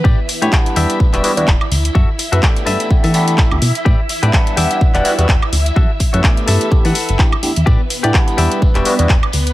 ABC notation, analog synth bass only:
X:1
M:4/4
L:1/16
Q:"Swing 16ths" 1/4=126
K:Edor
V:1 name="Analog synth bass" clef=bass
A,, z2 A,, z2 E,, z E,,, E,,, z E,, E,,, z D,, z | F,, z2 F,, z2 G,, z2 E,3 G,,, D,, B,, z | A,, z2 A,, z2 E,, z E,,, E,,, z E,, E,,, z D,, z | F,, z2 F,, z2 G,, z2 E, z G,,, z2 E,, E,, |
A,, z2 A,, z2 E,, z E,,, E,,, z E,, E,,, z D,, z |]